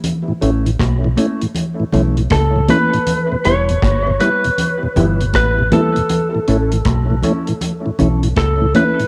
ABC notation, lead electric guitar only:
X:1
M:4/4
L:1/8
Q:"Swing 16ths" 1/4=79
K:Amix
V:1 name="Lead electric guitar"
z6 A B- | B c2 B3 B A- | A6 A B |]